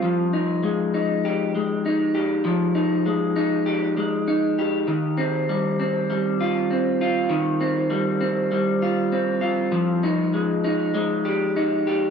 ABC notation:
X:1
M:4/4
L:1/8
Q:"Swing 16ths" 1/4=99
K:Eb
V:1 name="Clean electric guitar"
F, E A, E G A, E G | F, E A, E G A, E G | E, C G, C G, F C F | E, C G, C G, F C F |
F, E A, E A, G E G |]